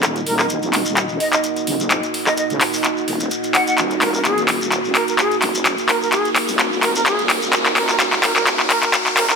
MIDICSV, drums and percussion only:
0, 0, Header, 1, 3, 480
1, 0, Start_track
1, 0, Key_signature, -6, "minor"
1, 0, Tempo, 468750
1, 33, Time_signature, 4, 2, 24, 8
1, 9580, End_track
2, 0, Start_track
2, 0, Title_t, "Shekere"
2, 37, Note_on_c, 9, 82, 67
2, 140, Note_off_c, 9, 82, 0
2, 166, Note_on_c, 9, 82, 38
2, 269, Note_off_c, 9, 82, 0
2, 400, Note_on_c, 9, 82, 79
2, 502, Note_off_c, 9, 82, 0
2, 503, Note_on_c, 9, 82, 64
2, 606, Note_off_c, 9, 82, 0
2, 642, Note_on_c, 9, 82, 40
2, 744, Note_off_c, 9, 82, 0
2, 875, Note_on_c, 9, 82, 84
2, 978, Note_off_c, 9, 82, 0
2, 992, Note_on_c, 9, 82, 68
2, 1095, Note_off_c, 9, 82, 0
2, 1116, Note_on_c, 9, 82, 37
2, 1219, Note_off_c, 9, 82, 0
2, 1364, Note_on_c, 9, 82, 87
2, 1466, Note_off_c, 9, 82, 0
2, 1471, Note_on_c, 9, 82, 65
2, 1573, Note_off_c, 9, 82, 0
2, 1605, Note_on_c, 9, 82, 42
2, 1707, Note_off_c, 9, 82, 0
2, 1847, Note_on_c, 9, 82, 76
2, 1948, Note_off_c, 9, 82, 0
2, 1948, Note_on_c, 9, 82, 68
2, 2050, Note_off_c, 9, 82, 0
2, 2085, Note_on_c, 9, 82, 44
2, 2187, Note_off_c, 9, 82, 0
2, 2323, Note_on_c, 9, 82, 76
2, 2425, Note_off_c, 9, 82, 0
2, 2429, Note_on_c, 9, 82, 66
2, 2531, Note_off_c, 9, 82, 0
2, 2562, Note_on_c, 9, 82, 38
2, 2665, Note_off_c, 9, 82, 0
2, 2800, Note_on_c, 9, 82, 83
2, 2902, Note_off_c, 9, 82, 0
2, 2907, Note_on_c, 9, 82, 61
2, 3009, Note_off_c, 9, 82, 0
2, 3043, Note_on_c, 9, 82, 39
2, 3145, Note_off_c, 9, 82, 0
2, 3275, Note_on_c, 9, 82, 84
2, 3378, Note_off_c, 9, 82, 0
2, 3391, Note_on_c, 9, 82, 72
2, 3494, Note_off_c, 9, 82, 0
2, 3516, Note_on_c, 9, 82, 37
2, 3619, Note_off_c, 9, 82, 0
2, 3764, Note_on_c, 9, 82, 81
2, 3867, Note_off_c, 9, 82, 0
2, 3872, Note_on_c, 9, 82, 71
2, 3974, Note_off_c, 9, 82, 0
2, 3999, Note_on_c, 9, 82, 36
2, 4102, Note_off_c, 9, 82, 0
2, 4241, Note_on_c, 9, 82, 74
2, 4344, Note_off_c, 9, 82, 0
2, 4351, Note_on_c, 9, 82, 63
2, 4453, Note_off_c, 9, 82, 0
2, 4483, Note_on_c, 9, 82, 38
2, 4585, Note_off_c, 9, 82, 0
2, 4731, Note_on_c, 9, 82, 75
2, 4832, Note_off_c, 9, 82, 0
2, 4832, Note_on_c, 9, 82, 71
2, 4934, Note_off_c, 9, 82, 0
2, 4963, Note_on_c, 9, 82, 36
2, 5065, Note_off_c, 9, 82, 0
2, 5206, Note_on_c, 9, 82, 79
2, 5308, Note_off_c, 9, 82, 0
2, 5318, Note_on_c, 9, 82, 66
2, 5420, Note_off_c, 9, 82, 0
2, 5444, Note_on_c, 9, 82, 36
2, 5547, Note_off_c, 9, 82, 0
2, 5680, Note_on_c, 9, 82, 85
2, 5782, Note_off_c, 9, 82, 0
2, 5792, Note_on_c, 9, 82, 65
2, 5895, Note_off_c, 9, 82, 0
2, 5917, Note_on_c, 9, 82, 35
2, 6019, Note_off_c, 9, 82, 0
2, 6167, Note_on_c, 9, 82, 72
2, 6270, Note_off_c, 9, 82, 0
2, 6276, Note_on_c, 9, 82, 69
2, 6378, Note_off_c, 9, 82, 0
2, 6402, Note_on_c, 9, 82, 37
2, 6504, Note_off_c, 9, 82, 0
2, 6635, Note_on_c, 9, 82, 80
2, 6738, Note_off_c, 9, 82, 0
2, 6756, Note_on_c, 9, 82, 61
2, 6859, Note_off_c, 9, 82, 0
2, 6892, Note_on_c, 9, 82, 37
2, 6994, Note_off_c, 9, 82, 0
2, 7124, Note_on_c, 9, 82, 85
2, 7227, Note_off_c, 9, 82, 0
2, 7239, Note_on_c, 9, 82, 64
2, 7342, Note_off_c, 9, 82, 0
2, 7364, Note_on_c, 9, 82, 37
2, 7466, Note_off_c, 9, 82, 0
2, 7604, Note_on_c, 9, 82, 69
2, 7706, Note_off_c, 9, 82, 0
2, 7719, Note_on_c, 9, 82, 64
2, 7822, Note_off_c, 9, 82, 0
2, 7841, Note_on_c, 9, 82, 41
2, 7944, Note_off_c, 9, 82, 0
2, 8078, Note_on_c, 9, 82, 82
2, 8180, Note_off_c, 9, 82, 0
2, 8193, Note_on_c, 9, 82, 72
2, 8295, Note_off_c, 9, 82, 0
2, 8320, Note_on_c, 9, 82, 35
2, 8423, Note_off_c, 9, 82, 0
2, 8566, Note_on_c, 9, 82, 78
2, 8669, Note_off_c, 9, 82, 0
2, 8672, Note_on_c, 9, 82, 65
2, 8774, Note_off_c, 9, 82, 0
2, 8803, Note_on_c, 9, 82, 39
2, 8905, Note_off_c, 9, 82, 0
2, 9044, Note_on_c, 9, 82, 78
2, 9147, Note_off_c, 9, 82, 0
2, 9150, Note_on_c, 9, 82, 63
2, 9252, Note_off_c, 9, 82, 0
2, 9280, Note_on_c, 9, 82, 41
2, 9383, Note_off_c, 9, 82, 0
2, 9521, Note_on_c, 9, 82, 66
2, 9580, Note_off_c, 9, 82, 0
2, 9580, End_track
3, 0, Start_track
3, 0, Title_t, "Drums"
3, 32, Note_on_c, 9, 37, 65
3, 32, Note_on_c, 9, 39, 63
3, 32, Note_on_c, 9, 42, 81
3, 134, Note_off_c, 9, 37, 0
3, 134, Note_off_c, 9, 39, 0
3, 134, Note_off_c, 9, 42, 0
3, 163, Note_on_c, 9, 42, 34
3, 265, Note_off_c, 9, 42, 0
3, 271, Note_on_c, 9, 46, 108
3, 374, Note_off_c, 9, 46, 0
3, 403, Note_on_c, 9, 37, 66
3, 403, Note_on_c, 9, 39, 50
3, 506, Note_off_c, 9, 37, 0
3, 506, Note_off_c, 9, 39, 0
3, 512, Note_on_c, 9, 42, 78
3, 615, Note_off_c, 9, 42, 0
3, 643, Note_on_c, 9, 42, 39
3, 746, Note_off_c, 9, 42, 0
3, 752, Note_on_c, 9, 39, 65
3, 752, Note_on_c, 9, 46, 117
3, 854, Note_off_c, 9, 39, 0
3, 854, Note_off_c, 9, 46, 0
3, 882, Note_on_c, 9, 42, 36
3, 984, Note_off_c, 9, 42, 0
3, 991, Note_on_c, 9, 39, 60
3, 991, Note_on_c, 9, 42, 75
3, 1093, Note_off_c, 9, 39, 0
3, 1093, Note_off_c, 9, 42, 0
3, 1231, Note_on_c, 9, 46, 114
3, 1334, Note_off_c, 9, 46, 0
3, 1363, Note_on_c, 9, 39, 59
3, 1363, Note_on_c, 9, 42, 51
3, 1465, Note_off_c, 9, 39, 0
3, 1465, Note_off_c, 9, 42, 0
3, 1472, Note_on_c, 9, 42, 77
3, 1574, Note_off_c, 9, 42, 0
3, 1603, Note_on_c, 9, 42, 36
3, 1705, Note_off_c, 9, 42, 0
3, 1711, Note_on_c, 9, 46, 114
3, 1814, Note_off_c, 9, 46, 0
3, 1843, Note_on_c, 9, 42, 53
3, 1945, Note_off_c, 9, 42, 0
3, 1953, Note_on_c, 9, 39, 71
3, 1953, Note_on_c, 9, 42, 82
3, 2055, Note_off_c, 9, 39, 0
3, 2055, Note_off_c, 9, 42, 0
3, 2083, Note_on_c, 9, 42, 36
3, 2185, Note_off_c, 9, 42, 0
3, 2192, Note_on_c, 9, 46, 103
3, 2294, Note_off_c, 9, 46, 0
3, 2323, Note_on_c, 9, 37, 63
3, 2323, Note_on_c, 9, 39, 57
3, 2425, Note_off_c, 9, 37, 0
3, 2425, Note_off_c, 9, 39, 0
3, 2432, Note_on_c, 9, 42, 78
3, 2534, Note_off_c, 9, 42, 0
3, 2563, Note_on_c, 9, 42, 37
3, 2665, Note_off_c, 9, 42, 0
3, 2672, Note_on_c, 9, 39, 69
3, 2672, Note_on_c, 9, 46, 119
3, 2774, Note_off_c, 9, 39, 0
3, 2774, Note_off_c, 9, 46, 0
3, 2803, Note_on_c, 9, 46, 65
3, 2906, Note_off_c, 9, 46, 0
3, 2913, Note_on_c, 9, 39, 68
3, 2913, Note_on_c, 9, 42, 74
3, 3015, Note_off_c, 9, 39, 0
3, 3015, Note_off_c, 9, 42, 0
3, 3152, Note_on_c, 9, 46, 110
3, 3255, Note_off_c, 9, 46, 0
3, 3283, Note_on_c, 9, 42, 50
3, 3385, Note_off_c, 9, 42, 0
3, 3392, Note_on_c, 9, 42, 78
3, 3494, Note_off_c, 9, 42, 0
3, 3523, Note_on_c, 9, 42, 35
3, 3625, Note_off_c, 9, 42, 0
3, 3632, Note_on_c, 9, 39, 74
3, 3632, Note_on_c, 9, 46, 110
3, 3734, Note_off_c, 9, 39, 0
3, 3734, Note_off_c, 9, 46, 0
3, 3763, Note_on_c, 9, 42, 52
3, 3865, Note_off_c, 9, 42, 0
3, 3872, Note_on_c, 9, 39, 80
3, 3872, Note_on_c, 9, 42, 80
3, 3974, Note_off_c, 9, 39, 0
3, 3974, Note_off_c, 9, 42, 0
3, 4003, Note_on_c, 9, 42, 36
3, 4106, Note_off_c, 9, 42, 0
3, 4112, Note_on_c, 9, 39, 74
3, 4112, Note_on_c, 9, 46, 99
3, 4214, Note_off_c, 9, 39, 0
3, 4214, Note_off_c, 9, 46, 0
3, 4352, Note_on_c, 9, 39, 78
3, 4352, Note_on_c, 9, 42, 76
3, 4454, Note_off_c, 9, 39, 0
3, 4454, Note_off_c, 9, 42, 0
3, 4483, Note_on_c, 9, 42, 39
3, 4586, Note_off_c, 9, 42, 0
3, 4592, Note_on_c, 9, 39, 80
3, 4592, Note_on_c, 9, 46, 113
3, 4694, Note_off_c, 9, 39, 0
3, 4694, Note_off_c, 9, 46, 0
3, 4723, Note_on_c, 9, 42, 35
3, 4825, Note_off_c, 9, 42, 0
3, 4832, Note_on_c, 9, 39, 77
3, 4832, Note_on_c, 9, 42, 75
3, 4935, Note_off_c, 9, 39, 0
3, 4935, Note_off_c, 9, 42, 0
3, 5072, Note_on_c, 9, 39, 80
3, 5072, Note_on_c, 9, 46, 106
3, 5174, Note_off_c, 9, 39, 0
3, 5174, Note_off_c, 9, 46, 0
3, 5203, Note_on_c, 9, 42, 52
3, 5305, Note_off_c, 9, 42, 0
3, 5312, Note_on_c, 9, 39, 82
3, 5312, Note_on_c, 9, 42, 74
3, 5414, Note_off_c, 9, 39, 0
3, 5414, Note_off_c, 9, 42, 0
3, 5443, Note_on_c, 9, 42, 36
3, 5545, Note_off_c, 9, 42, 0
3, 5552, Note_on_c, 9, 39, 82
3, 5552, Note_on_c, 9, 46, 106
3, 5654, Note_off_c, 9, 39, 0
3, 5654, Note_off_c, 9, 46, 0
3, 5683, Note_on_c, 9, 42, 51
3, 5786, Note_off_c, 9, 42, 0
3, 5792, Note_on_c, 9, 39, 90
3, 5792, Note_on_c, 9, 42, 84
3, 5894, Note_off_c, 9, 39, 0
3, 5894, Note_off_c, 9, 42, 0
3, 5923, Note_on_c, 9, 42, 37
3, 6026, Note_off_c, 9, 42, 0
3, 6032, Note_on_c, 9, 39, 85
3, 6032, Note_on_c, 9, 46, 100
3, 6135, Note_off_c, 9, 39, 0
3, 6135, Note_off_c, 9, 46, 0
3, 6272, Note_on_c, 9, 39, 88
3, 6272, Note_on_c, 9, 42, 83
3, 6374, Note_off_c, 9, 39, 0
3, 6374, Note_off_c, 9, 42, 0
3, 6403, Note_on_c, 9, 42, 40
3, 6505, Note_off_c, 9, 42, 0
3, 6512, Note_on_c, 9, 39, 91
3, 6512, Note_on_c, 9, 46, 110
3, 6615, Note_off_c, 9, 39, 0
3, 6615, Note_off_c, 9, 46, 0
3, 6643, Note_on_c, 9, 46, 60
3, 6745, Note_off_c, 9, 46, 0
3, 6752, Note_on_c, 9, 39, 88
3, 6752, Note_on_c, 9, 42, 77
3, 6855, Note_off_c, 9, 39, 0
3, 6855, Note_off_c, 9, 42, 0
3, 6992, Note_on_c, 9, 39, 94
3, 6992, Note_on_c, 9, 46, 104
3, 7095, Note_off_c, 9, 39, 0
3, 7095, Note_off_c, 9, 46, 0
3, 7123, Note_on_c, 9, 42, 55
3, 7225, Note_off_c, 9, 42, 0
3, 7232, Note_on_c, 9, 39, 92
3, 7232, Note_on_c, 9, 42, 78
3, 7334, Note_off_c, 9, 39, 0
3, 7334, Note_off_c, 9, 42, 0
3, 7363, Note_on_c, 9, 42, 37
3, 7465, Note_off_c, 9, 42, 0
3, 7472, Note_on_c, 9, 39, 93
3, 7472, Note_on_c, 9, 46, 106
3, 7574, Note_off_c, 9, 39, 0
3, 7574, Note_off_c, 9, 46, 0
3, 7603, Note_on_c, 9, 42, 53
3, 7706, Note_off_c, 9, 42, 0
3, 7712, Note_on_c, 9, 39, 99
3, 7712, Note_on_c, 9, 42, 84
3, 7815, Note_off_c, 9, 39, 0
3, 7815, Note_off_c, 9, 42, 0
3, 7843, Note_on_c, 9, 39, 82
3, 7843, Note_on_c, 9, 42, 38
3, 7946, Note_off_c, 9, 39, 0
3, 7946, Note_off_c, 9, 42, 0
3, 7952, Note_on_c, 9, 39, 91
3, 7952, Note_on_c, 9, 46, 98
3, 8055, Note_off_c, 9, 39, 0
3, 8055, Note_off_c, 9, 46, 0
3, 8082, Note_on_c, 9, 39, 82
3, 8185, Note_off_c, 9, 39, 0
3, 8193, Note_on_c, 9, 39, 96
3, 8193, Note_on_c, 9, 42, 82
3, 8295, Note_off_c, 9, 39, 0
3, 8295, Note_off_c, 9, 42, 0
3, 8323, Note_on_c, 9, 39, 88
3, 8323, Note_on_c, 9, 42, 39
3, 8426, Note_off_c, 9, 39, 0
3, 8426, Note_off_c, 9, 42, 0
3, 8432, Note_on_c, 9, 39, 104
3, 8432, Note_on_c, 9, 46, 105
3, 8535, Note_off_c, 9, 39, 0
3, 8535, Note_off_c, 9, 46, 0
3, 8564, Note_on_c, 9, 39, 83
3, 8564, Note_on_c, 9, 42, 37
3, 8666, Note_off_c, 9, 39, 0
3, 8666, Note_off_c, 9, 42, 0
3, 8672, Note_on_c, 9, 39, 95
3, 8672, Note_on_c, 9, 42, 79
3, 8775, Note_off_c, 9, 39, 0
3, 8775, Note_off_c, 9, 42, 0
3, 8804, Note_on_c, 9, 39, 89
3, 8906, Note_off_c, 9, 39, 0
3, 8912, Note_on_c, 9, 39, 98
3, 8912, Note_on_c, 9, 46, 106
3, 9015, Note_off_c, 9, 39, 0
3, 9015, Note_off_c, 9, 46, 0
3, 9043, Note_on_c, 9, 39, 91
3, 9043, Note_on_c, 9, 42, 55
3, 9145, Note_off_c, 9, 39, 0
3, 9145, Note_off_c, 9, 42, 0
3, 9152, Note_on_c, 9, 39, 102
3, 9152, Note_on_c, 9, 42, 85
3, 9254, Note_off_c, 9, 39, 0
3, 9254, Note_off_c, 9, 42, 0
3, 9283, Note_on_c, 9, 39, 84
3, 9283, Note_on_c, 9, 42, 39
3, 9385, Note_off_c, 9, 39, 0
3, 9385, Note_off_c, 9, 42, 0
3, 9392, Note_on_c, 9, 39, 103
3, 9392, Note_on_c, 9, 46, 107
3, 9495, Note_off_c, 9, 39, 0
3, 9495, Note_off_c, 9, 46, 0
3, 9523, Note_on_c, 9, 39, 94
3, 9523, Note_on_c, 9, 42, 57
3, 9580, Note_off_c, 9, 39, 0
3, 9580, Note_off_c, 9, 42, 0
3, 9580, End_track
0, 0, End_of_file